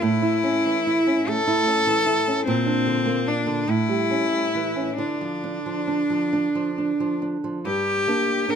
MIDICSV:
0, 0, Header, 1, 3, 480
1, 0, Start_track
1, 0, Key_signature, -1, "minor"
1, 0, Tempo, 825309
1, 15, Time_signature, 6, 3, 24, 8
1, 975, Tempo, 796813
1, 1935, Tempo, 852273
1, 2415, Tempo, 884956
1, 4335, Tempo, 825309
1, 4854, End_track
2, 0, Start_track
2, 0, Title_t, "Cello"
2, 0, Program_c, 0, 42
2, 13, Note_on_c, 0, 64, 86
2, 746, Note_on_c, 0, 69, 106
2, 755, Note_off_c, 0, 64, 0
2, 1443, Note_off_c, 0, 69, 0
2, 1447, Note_on_c, 0, 60, 96
2, 1937, Note_on_c, 0, 62, 75
2, 1946, Note_off_c, 0, 60, 0
2, 2175, Note_on_c, 0, 64, 89
2, 2183, Note_off_c, 0, 62, 0
2, 2883, Note_off_c, 0, 64, 0
2, 2886, Note_on_c, 0, 62, 62
2, 4076, Note_off_c, 0, 62, 0
2, 4335, Note_on_c, 0, 67, 89
2, 4827, Note_on_c, 0, 70, 80
2, 4836, Note_off_c, 0, 67, 0
2, 4854, Note_off_c, 0, 70, 0
2, 4854, End_track
3, 0, Start_track
3, 0, Title_t, "Nylon-string guitar"
3, 0, Program_c, 1, 24
3, 13, Note_on_c, 1, 45, 77
3, 131, Note_on_c, 1, 64, 63
3, 255, Note_on_c, 1, 61, 62
3, 327, Note_off_c, 1, 64, 0
3, 381, Note_on_c, 1, 52, 58
3, 452, Note_off_c, 1, 61, 0
3, 505, Note_on_c, 1, 64, 62
3, 578, Note_off_c, 1, 52, 0
3, 623, Note_on_c, 1, 61, 65
3, 699, Note_off_c, 1, 64, 0
3, 742, Note_on_c, 1, 57, 64
3, 814, Note_off_c, 1, 61, 0
3, 858, Note_on_c, 1, 64, 64
3, 929, Note_off_c, 1, 57, 0
3, 973, Note_on_c, 1, 61, 57
3, 1045, Note_off_c, 1, 64, 0
3, 1091, Note_on_c, 1, 52, 58
3, 1163, Note_off_c, 1, 61, 0
3, 1208, Note_on_c, 1, 64, 65
3, 1281, Note_off_c, 1, 52, 0
3, 1336, Note_on_c, 1, 61, 60
3, 1400, Note_off_c, 1, 64, 0
3, 1424, Note_off_c, 1, 45, 0
3, 1452, Note_off_c, 1, 61, 0
3, 1455, Note_on_c, 1, 46, 82
3, 1570, Note_on_c, 1, 62, 60
3, 1690, Note_on_c, 1, 50, 59
3, 1763, Note_off_c, 1, 62, 0
3, 1807, Note_on_c, 1, 58, 55
3, 1886, Note_off_c, 1, 50, 0
3, 1930, Note_on_c, 1, 62, 60
3, 2003, Note_off_c, 1, 58, 0
3, 2045, Note_on_c, 1, 50, 59
3, 2121, Note_off_c, 1, 62, 0
3, 2153, Note_off_c, 1, 46, 0
3, 2163, Note_on_c, 1, 45, 66
3, 2168, Note_off_c, 1, 50, 0
3, 2285, Note_on_c, 1, 55, 54
3, 2407, Note_on_c, 1, 61, 51
3, 2482, Note_off_c, 1, 55, 0
3, 2525, Note_on_c, 1, 55, 51
3, 2601, Note_off_c, 1, 61, 0
3, 2647, Note_on_c, 1, 52, 56
3, 2720, Note_off_c, 1, 55, 0
3, 2762, Note_on_c, 1, 61, 51
3, 2841, Note_off_c, 1, 52, 0
3, 2867, Note_off_c, 1, 45, 0
3, 2882, Note_on_c, 1, 50, 68
3, 2887, Note_off_c, 1, 61, 0
3, 3005, Note_on_c, 1, 53, 50
3, 3128, Note_on_c, 1, 62, 53
3, 3202, Note_off_c, 1, 53, 0
3, 3249, Note_on_c, 1, 53, 47
3, 3324, Note_off_c, 1, 62, 0
3, 3366, Note_on_c, 1, 62, 46
3, 3447, Note_off_c, 1, 53, 0
3, 3488, Note_on_c, 1, 53, 46
3, 3566, Note_off_c, 1, 62, 0
3, 3611, Note_on_c, 1, 62, 48
3, 3687, Note_off_c, 1, 53, 0
3, 3733, Note_on_c, 1, 53, 47
3, 3809, Note_off_c, 1, 62, 0
3, 3857, Note_on_c, 1, 62, 45
3, 3929, Note_off_c, 1, 53, 0
3, 3977, Note_on_c, 1, 53, 47
3, 4051, Note_off_c, 1, 62, 0
3, 4095, Note_on_c, 1, 62, 47
3, 4170, Note_off_c, 1, 53, 0
3, 4215, Note_on_c, 1, 53, 47
3, 4286, Note_off_c, 1, 62, 0
3, 4308, Note_off_c, 1, 50, 0
3, 4329, Note_on_c, 1, 43, 75
3, 4332, Note_off_c, 1, 53, 0
3, 4567, Note_off_c, 1, 43, 0
3, 4576, Note_on_c, 1, 58, 60
3, 4580, Note_on_c, 1, 62, 63
3, 4792, Note_off_c, 1, 58, 0
3, 4792, Note_off_c, 1, 62, 0
3, 4814, Note_on_c, 1, 58, 53
3, 4815, Note_on_c, 1, 62, 61
3, 4854, Note_off_c, 1, 58, 0
3, 4854, Note_off_c, 1, 62, 0
3, 4854, End_track
0, 0, End_of_file